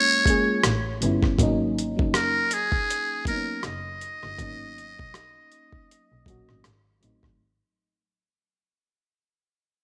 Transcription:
0.00 0.26 G#3 medium
0.00 0.27 A#3 medium
0.00 0.29 C#4 medium
0.00 0.66 F4 medium
0.00 0.98 C#5 loud
0.26 0.64 G#3 medium
0.26 0.64 A#3 medium
0.26 0.65 C#4 medium
0.26 kick medium
0.26 closed hi-hat soft
0.30 0.66 G#4 medium
0.63 0.97 A1 medium
0.63 cross-stick loud
0.63 closed hi-hat medium
1.01 1.35 G1 medium
1.01 1.31 G3 medium
1.01 1.32 B3 medium
1.01 1.33 C#4 medium
1.01 closed hi-hat medium
1.05 1.33 E4 medium
1.23 kick medium
1.23 cross-stick soft
1.38 1.90 G#1 medium
1.38 1.83 F#3 medium
1.38 1.84 A#3 medium
1.38 1.84 C#4 medium
1.38 kick medium
1.38 closed hi-hat medium
1.43 1.85 D#4 loud
1.78 closed hi-hat medium
1.97 2.11 F#1 soft
1.97 2.98 F#3 medium
1.97 2.98 A#3 soft
1.97 2.99 C#4 medium
1.97 kick medium
2.01 3.00 D#4 medium
2.14 2.55 A#4 medium
2.14 cross-stick loud
2.14 closed hi-hat medium
2.51 3.27 G#4 medium
2.51 closed hi-hat medium
2.72 kick medium
2.90 closed hi-hat medium
3.25 4.15 F#3 medium
3.25 4.16 A#3 medium
3.25 3.35 B3 soft
3.25 3.62 A#4 medium
3.25 kick medium
3.25 closed hi-hat soft
3.30 4.17 D#4 medium
3.36 4.20 C#4 medium
3.63 3.97 F#1 medium
3.63 6.61 D#5 medium
3.63 cross-stick loud
3.63 closed hi-hat medium
4.01 closed hi-hat medium
4.23 4.37 G1 medium
4.23 cross-stick soft
4.38 4.90 G#1 medium
4.38 5.56 F#3 medium
4.38 5.56 A#3 medium
4.38 5.57 C#4 medium
4.38 kick loud
4.38 closed hi-hat medium
4.43 5.58 D#4 medium
4.78 closed hi-hat soft
4.99 5.11 B1 soft
4.99 kick medium
5.14 cross-stick medium
5.14 closed hi-hat medium
5.52 closed hi-hat medium
5.72 kick medium
5.91 closed hi-hat medium
6.12 6.25 B1 medium
6.26 6.45 A#1 medium
6.26 6.63 F#3 medium
6.26 6.64 A#3 medium
6.26 6.65 C#4 medium
6.26 kick medium
6.26 closed hi-hat soft
6.30 6.66 F#4 medium
6.49 6.63 G#1 medium
6.49 cross-stick soft
6.64 6.83 G#1 medium
6.64 cross-stick loud
6.64 closed hi-hat medium
7.01 7.20 A1 medium
7.01 7.31 F#3 medium
7.01 7.32 A3 medium
7.01 7.32 C4 medium
7.01 closed hi-hat medium
7.05 7.33 D#4 medium
7.23 7.37 G#1 medium
7.23 kick medium
7.23 cross-stick soft

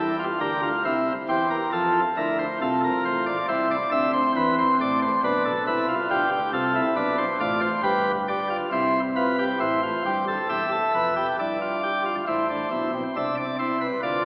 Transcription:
0.00 0.24 E2 medium
0.00 0.24 E3 medium
0.00 0.16 E4 medium
0.00 0.24 G4 medium
0.19 0.38 F4 medium
0.41 0.68 D2 medium
0.41 0.68 D3 medium
0.41 0.60 G4 medium
0.41 0.68 A#4 medium
0.63 0.82 F4 medium
0.85 1.12 C2 medium
0.85 1.12 C3 medium
0.85 1.12 E4 medium
0.85 1.12 C5 medium
1.29 1.56 E2 medium
1.29 1.56 E3 medium
1.29 1.56 G4 medium
1.29 1.48 C5 medium
1.50 1.70 A#4 medium
1.72 2.00 F2 medium
1.72 2.00 F3 medium
1.72 2.00 F4 medium
1.72 2.00 A4 medium
2.17 2.45 D2 medium
2.17 2.44 D3 medium
2.17 2.44 E4 medium
2.17 2.36 A#4 medium
2.39 2.58 C5 medium
2.61 2.89 C2 medium
2.61 2.89 C3 medium
2.61 3.37 F4 medium
2.61 2.80 A4 medium
2.84 3.03 A#4 medium
3.05 3.32 A1 medium
3.05 3.32 A2 medium
3.05 3.24 C5 medium
3.26 3.45 D5 medium
3.48 3.75 C2 medium
3.48 3.76 C3 medium
3.48 3.76 E4 medium
3.48 3.67 C5 medium
3.71 3.90 D5 medium
3.92 4.19 D2 medium
3.92 4.19 D3 medium
3.92 5.05 C4 medium
3.92 4.11 E5 medium
4.13 4.32 C5 medium
4.36 4.63 E2 medium
4.36 4.63 E3 medium
4.36 4.55 B4 medium
4.59 4.77 C5 medium
4.81 5.08 A1 medium
4.81 5.07 A2 medium
4.81 4.99 D5 medium
5.02 5.21 C5 medium
5.24 5.51 B1 medium
5.24 5.51 B2 medium
5.24 5.51 D4 medium
5.24 5.42 B4 medium
5.45 5.64 A4 medium
5.67 5.94 C2 medium
5.67 5.94 C3 medium
5.67 5.94 E4 medium
5.67 5.86 B4 medium
5.89 6.07 F4 medium
6.10 6.37 D2 medium
6.10 6.37 D3 medium
6.10 6.29 F4 medium
6.10 6.30 G4 medium
6.32 6.50 G4 medium
6.53 6.80 C2 medium
6.53 6.81 C3 medium
6.53 6.72 F4 medium
6.53 6.81 A4 medium
6.75 6.94 E4 medium
6.96 7.24 B1 medium
6.96 7.24 B2 medium
6.96 7.24 D4 medium
6.96 7.16 B4 medium
7.18 7.38 C5 medium
7.40 7.68 A1 medium
7.40 7.68 A2 medium
7.40 7.68 F4 medium
7.40 7.60 D5 medium
7.61 7.81 C5 medium
7.83 8.60 G1 medium
7.83 8.60 G2 medium
7.83 8.11 G4 medium
7.83 8.11 B4 medium
8.28 8.47 G4 medium
8.28 8.56 D5 medium
8.50 8.69 F4 medium
8.72 9.49 C2 medium
8.72 9.49 C3 medium
8.72 9.00 E4 medium
8.72 9.00 C5 medium
9.16 9.36 F4 medium
9.16 9.44 B4 medium
9.39 9.58 G4 medium
9.60 9.88 A1 medium
9.60 9.88 A2 medium
9.60 9.80 E4 medium
9.60 10.37 C5 medium
9.83 10.03 F4 medium
10.06 10.33 G1 medium
10.06 10.33 G2 medium
10.06 10.25 G4 medium
10.28 10.47 A4 medium
10.49 10.77 E1 medium
10.49 10.77 E2 medium
10.49 10.69 G4 medium
10.49 11.26 E5 medium
10.72 10.91 A4 medium
10.95 11.22 F1 soft
10.95 11.22 F2 soft
10.95 11.14 B4 medium
11.16 11.36 G4 medium
11.39 12.15 G1 medium
11.39 12.15 G2 soft
11.39 11.58 E4 medium
11.39 12.15 D5 medium
11.61 11.80 F4 medium
11.83 12.02 G4 medium
12.05 12.24 F4 medium
12.27 12.55 A1 medium
12.27 12.55 A2 medium
12.27 12.46 E4 medium
12.27 13.03 C5 medium
12.50 12.68 D4 medium
12.71 12.99 B1 medium
12.71 12.99 B2 soft
12.71 12.90 E4 medium
12.94 13.13 C4 medium
13.16 13.91 C2 medium
13.16 13.91 C3 medium
13.16 13.43 D4 medium
13.16 13.35 E5 medium
13.37 13.56 D5 medium
13.59 13.86 E4 medium
13.59 13.78 C5 medium
13.81 14.00 B4 medium
14.03 14.25 D2 medium
14.03 14.25 D3 medium
14.03 14.25 F4 medium
14.03 14.22 D5 medium

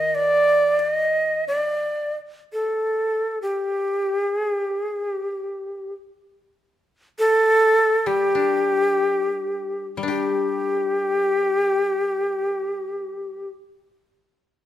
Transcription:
0.00 1.87 D#3 medium
0.00 0.16 D#5 medium
0.15 0.79 D5 medium
0.79 0.92 D5 medium
0.92 1.45 D#5 medium
1.48 2.14 D5 medium
2.53 3.39 A4 medium
3.42 4.31 G4 medium
4.31 4.55 G#4 medium
4.55 4.81 G4 medium
4.81 5.05 G#4 medium
5.05 5.93 G4 medium
7.19 8.08 A4 loud
8.06 9.96 G3 soft
8.06 9.87 G4 medium
8.35 10.02 D4 soft
9.97 13.41 G3 soft
10.03 13.47 D4 soft
10.08 13.52 G4 soft
10.08 13.49 G4 medium

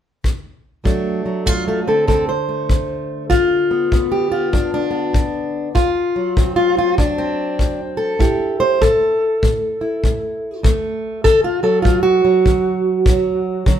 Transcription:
0.24 kick medium
0.84 1.41 D2 medium
0.84 1.24 F#3 soft
0.84 1.46 A3 soft
0.84 1.88 D4 soft
0.84 kick medium
1.26 1.87 F#3 soft
1.46 2.04 D2 medium
1.46 1.53 A3 medium
1.46 1.67 F4 medium
1.46 kick medium
1.68 1.79 A3 medium
1.68 1.88 F4 medium
1.88 5.77 D3 soft
1.88 2.06 C4 medium
1.88 2.07 A4 medium
2.08 2.66 D2 medium
2.08 2.28 C4 medium
2.08 2.28 A4 medium
2.08 kick medium
2.29 3.23 C5 medium
2.49 3.29 A3 soft
2.69 3.27 D2 medium
2.69 kick medium
3.30 3.87 G2 medium
3.30 4.30 F4 medium
3.30 kick medium
3.71 3.92 B3 soft
3.92 4.49 G2 medium
3.92 4.30 B3 soft
3.92 kick medium
4.12 4.53 G4 medium
4.31 4.89 B3 soft
4.31 5.14 F4 medium
4.53 5.10 G2 medium
4.53 4.73 D4 medium
4.53 kick medium
4.74 5.68 D4 medium
4.91 5.72 B3 soft
5.13 5.70 G2 medium
5.13 kick medium
5.75 6.32 D2 medium
5.75 6.55 F4 medium
5.75 kick medium
6.16 8.19 F#3 soft
6.37 6.93 D2 medium
6.37 6.75 C4 soft
6.37 kick medium
6.56 6.77 F4 medium
6.77 7.17 C4 soft
6.77 6.98 F4 medium
6.98 7.55 D2 medium
6.98 7.79 D4 medium
6.98 kick medium
7.18 8.12 C4 medium
7.59 8.15 D2 medium
7.59 kick medium
7.97 8.58 A4 medium
8.19 8.76 A2 medium
8.19 9.80 E4 soft
8.19 8.81 G4 soft
8.19 kick medium
8.60 8.82 C5 medium
8.81 9.37 A2 medium
8.81 10.64 A4 medium
8.81 kick medium
9.43 9.99 A2 medium
9.43 kick medium
9.81 10.61 E4 soft
10.04 10.60 A2 medium
10.04 kick medium
10.63 11.19 D2 medium
10.63 11.24 A3 soft
10.63 kick medium
11.24 11.81 D3 medium
11.24 11.44 A4 loud
11.24 kick medium
11.44 11.63 F4 medium
11.63 12.24 F#3 soft
11.63 11.82 A4 medium
11.82 12.40 A2 medium
11.82 12.02 F4 medium
11.82 kick medium
12.03 13.80 F#4 medium
12.25 13.09 F#3 soft
12.46 13.02 D3 medium
12.46 kick medium
13.06 13.63 D2 medium
13.06 13.67 F#3 soft
13.06 kick medium
13.66 13.80 D3 medium
13.66 13.80 F#3 soft
13.66 kick medium

